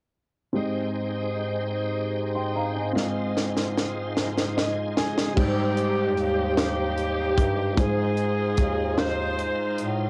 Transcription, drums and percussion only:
2.97 snare soft
3.37 snare soft
3.57 snare soft
3.77 snare medium
4.17 snare medium
4.37 snare medium
4.58 snare medium
4.97 snare medium
5.18 snare medium
5.37 kick medium
5.37 crash medium
5.77 closed hi-hat soft
6.17 closed hi-hat medium
6.57 snare medium
6.57 closed hi-hat medium
6.98 closed hi-hat soft
7.38 kick medium
7.38 closed hi-hat medium
7.78 kick medium
7.78 closed hi-hat medium
8.17 closed hi-hat soft
8.57 kick medium
8.57 closed hi-hat medium
8.98 snare medium
8.98 closed hi-hat medium
9.39 closed hi-hat soft
9.78 closed hi-hat soft

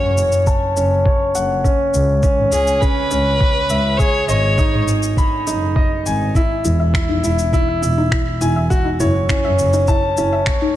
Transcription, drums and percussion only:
0.18 shaker medium
0.32 shaker soft
0.47 kick loud
0.47 shaker soft
0.77 shaker medium
1.06 kick loud
1.35 shaker medium
1.64 kick loud
1.64 shaker soft
1.94 shaker medium
2.23 kick loud
2.23 shaker soft
2.52 shaker medium
2.67 shaker soft
2.82 kick loud
2.82 shaker soft
3.11 shaker medium
3.41 kick loud
3.70 shaker medium
3.99 kick medium
3.99 shaker soft
4.29 shaker medium
4.58 kick loud
4.58 shaker soft
4.88 shaker medium
5.03 shaker soft
5.17 kick loud
5.17 shaker soft
5.47 shaker medium
5.76 kick loud
6.06 shaker medium
6.35 kick loud
6.35 shaker soft
6.65 shaker medium
6.94 finger snap medium
6.94 kick loud
6.94 shaker soft
7.24 shaker medium
7.39 shaker soft
7.53 kick medium
7.53 shaker soft
7.83 shaker medium
8.12 finger snap medium
8.12 kick loud
8.42 shaker medium
8.71 kick loud
8.71 shaker soft
9.00 shaker medium
9.29 finger snap medium
9.29 kick loud
9.29 shaker soft
9.59 shaker medium
9.73 shaker soft
9.88 kick loud
9.88 shaker soft
10.17 shaker medium
10.46 finger snap medium
10.46 kick loud

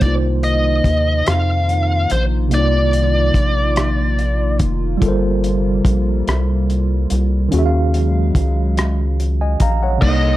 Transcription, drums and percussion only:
0.01 kick medium
0.01 closed hi-hat medium
0.43 closed hi-hat soft
0.84 kick medium
0.84 closed hi-hat medium
1.26 cross-stick loud
1.26 closed hi-hat medium
1.69 closed hi-hat soft
2.10 closed hi-hat medium
2.51 closed hi-hat medium
2.93 closed hi-hat soft
3.34 kick medium
3.34 closed hi-hat medium
3.76 cross-stick loud
3.76 closed hi-hat medium
4.19 closed hi-hat soft
4.59 kick medium
4.59 closed hi-hat medium
5.02 kick medium
5.02 closed hi-hat medium
5.44 closed hi-hat soft
5.85 kick medium
5.85 closed hi-hat medium
6.28 cross-stick medium
6.28 closed hi-hat medium
6.70 closed hi-hat soft
7.10 closed hi-hat medium
7.52 closed hi-hat medium
7.94 closed hi-hat soft
8.35 kick medium
8.35 closed hi-hat medium
8.77 cross-stick loud
8.77 closed hi-hat medium
9.20 closed hi-hat soft
9.60 kick medium
9.60 closed hi-hat medium
10.02 kick medium
10.02 crash loud

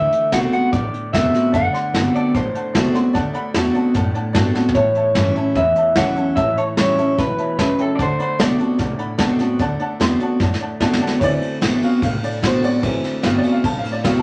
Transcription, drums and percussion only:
0.12 closed hi-hat medium
0.32 snare loud
0.32 closed hi-hat medium
0.53 closed hi-hat medium
0.73 kick loud
0.73 closed hi-hat medium
0.94 closed hi-hat medium
1.14 kick medium
1.14 snare loud
1.14 closed hi-hat medium
1.34 snare soft
1.34 closed hi-hat medium
1.54 kick loud
1.54 closed hi-hat medium
1.75 snare soft
1.75 closed hi-hat medium
1.94 snare loud
1.94 closed hi-hat medium
2.15 closed hi-hat medium
2.35 kick loud
2.35 closed hi-hat medium
2.55 closed hi-hat medium
2.75 kick medium
2.75 snare loud
2.75 closed hi-hat medium
2.95 snare soft
2.95 closed hi-hat medium
3.14 kick loud
3.14 snare soft
3.14 closed hi-hat medium
3.34 closed hi-hat medium
3.54 snare loud
3.54 closed hi-hat medium
3.75 closed hi-hat medium
3.94 kick loud
3.94 snare soft
3.94 closed hi-hat medium
4.15 closed hi-hat medium
4.35 kick medium
4.35 snare loud
4.35 closed hi-hat medium
4.55 snare medium
4.69 floor tom medium
4.74 kick loud
4.74 closed hi-hat medium
4.95 closed hi-hat medium
5.15 snare loud
5.15 closed hi-hat medium
5.36 closed hi-hat medium
5.55 kick loud
5.55 closed hi-hat medium
5.76 closed hi-hat medium
5.96 kick medium
5.96 snare loud
5.96 closed hi-hat medium
6.16 closed hi-hat medium
6.37 kick loud
6.37 closed hi-hat medium
6.57 closed hi-hat medium
6.77 snare loud
6.77 closed hi-hat medium
6.98 closed hi-hat medium
7.18 kick loud
7.18 snare soft
7.18 closed hi-hat medium
7.38 closed hi-hat medium
7.59 kick medium
7.59 snare loud
7.59 closed hi-hat medium
7.79 closed hi-hat medium
7.99 kick loud
7.99 snare soft
7.99 closed hi-hat medium
8.20 closed hi-hat medium
8.40 snare loud
8.40 closed hi-hat medium
8.60 closed hi-hat medium
8.79 kick loud
8.79 snare soft
8.79 closed hi-hat medium
8.99 closed hi-hat medium
9.18 kick medium
9.18 snare loud
9.18 closed hi-hat medium
9.39 snare soft
9.39 closed hi-hat medium
9.59 kick loud
9.59 closed hi-hat medium
9.80 closed hi-hat medium
10.01 snare loud
10.01 closed hi-hat medium
10.20 closed hi-hat medium
10.40 kick loud
10.40 snare medium
10.54 snare medium
10.80 kick medium
10.80 snare medium
10.93 snare loud
11.07 snare medium
11.21 kick loud
11.21 snare soft
11.21 ride medium
11.42 ride medium
11.62 snare loud
11.62 ride medium
11.83 ride medium
12.02 kick loud
12.02 ride medium
12.24 ride medium
12.43 kick medium
12.43 snare loud
12.43 ride medium
12.64 ride medium
12.83 kick loud
12.83 ride medium
13.04 snare soft
13.04 ride medium
13.23 snare loud
13.23 ride medium
13.43 ride medium
13.64 kick loud
13.64 ride medium
13.85 ride medium
14.04 kick medium
14.04 snare loud
14.04 ride medium

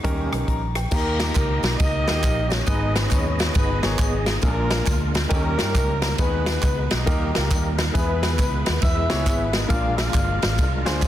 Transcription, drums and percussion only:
0.04 kick loud
0.04 closed hi-hat medium
0.33 cross-stick medium
0.33 closed hi-hat medium
0.48 kick medium
0.48 closed hi-hat medium
0.75 cross-stick medium
0.75 closed hi-hat medium
0.91 kick loud
0.91 crash loud
0.91 tambourine medium
1.20 snare loud
1.20 ride medium
1.20 tambourine medium
1.35 kick medium
1.35 clap medium
1.35 ride medium
1.35 tambourine medium
1.63 snare loud
1.63 ride medium
1.63 tambourine medium
1.80 kick loud
1.80 ride medium
1.80 tambourine medium
2.08 snare loud
2.08 ride medium
2.08 tambourine soft
2.23 kick medium
2.23 clap medium
2.23 ride medium
2.23 tambourine loud
2.50 snare loud
2.50 ride medium
2.50 tambourine medium
2.66 kick loud
2.66 ride medium
2.66 tambourine medium
2.95 snare loud
2.95 ride medium
2.95 tambourine medium
3.11 kick medium
3.11 clap medium
3.11 ride medium
3.11 tambourine medium
3.39 snare loud
3.39 ride medium
3.39 tambourine soft
3.54 kick loud
3.54 ride medium
3.54 tambourine medium
3.83 snare loud
3.83 ride medium
3.83 tambourine medium
3.99 kick medium
3.99 clap loud
3.99 ride medium
3.99 tambourine medium
4.26 snare loud
4.26 ride medium
4.26 tambourine medium
4.42 kick loud
4.42 ride medium
4.42 tambourine medium
4.71 snare loud
4.71 ride medium
4.71 tambourine medium
4.86 kick loud
4.86 clap medium
4.86 ride medium
4.86 tambourine medium
5.14 snare loud
5.14 ride medium
5.14 tambourine medium
5.30 kick loud
5.30 ride medium
5.30 tambourine medium
5.59 snare medium
5.59 ride medium
5.59 tambourine medium
5.75 kick medium
5.75 clap loud
5.75 ride medium
5.75 tambourine loud
6.02 snare loud
6.02 ride medium
6.02 tambourine medium
6.18 kick loud
6.18 ride medium
6.18 tambourine medium
6.46 snare loud
6.46 ride medium
6.46 tambourine medium
6.62 kick loud
6.62 clap medium
6.62 ride medium
6.62 tambourine medium
6.91 snare loud
6.91 ride medium
6.91 tambourine medium
7.07 kick loud
7.07 ride medium
7.07 tambourine medium
7.35 snare loud
7.35 ride medium
7.35 tambourine medium
7.51 kick medium
7.51 clap loud
7.51 ride medium
7.51 tambourine medium
7.78 snare loud
7.78 ride medium
7.78 tambourine medium
7.95 kick loud
7.95 ride medium
7.95 tambourine medium
8.23 snare loud
8.23 ride medium
8.23 tambourine medium
8.39 kick medium
8.39 clap medium
8.39 ride medium
8.39 tambourine medium
8.66 snare loud
8.66 ride medium
8.66 tambourine soft
8.82 kick loud
8.82 ride medium
8.82 tambourine medium
9.10 snare loud
9.10 ride soft
9.10 tambourine medium
9.26 kick medium
9.26 clap medium
9.26 ride medium
9.26 tambourine loud
9.53 snare loud
9.53 ride medium
9.53 tambourine medium
9.70 kick loud
9.70 ride medium
9.70 tambourine medium
9.98 snare loud
9.98 ride medium
9.98 tambourine soft
10.14 kick medium
10.14 clap medium
10.14 ride medium
10.14 tambourine medium
10.42 snare loud
10.42 ride medium
10.42 tambourine medium
10.58 kick loud
10.58 ride medium
10.58 tambourine medium
10.86 snare loud
10.86 ride medium
10.86 tambourine medium
11.02 kick medium
11.02 clap loud
11.02 ride medium
11.02 tambourine loud

